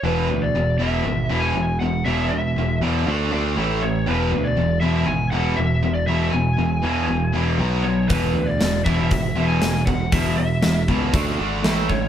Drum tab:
HH |--------|--------|--------|--------|
SD |--------|--------|--------|--------|
BD |--------|--------|--------|--------|

HH |o-o-o-o-|o-o-o-o-|
SD |--o---o-|--o---o-|
BD |o--oo--o|o--oo--o|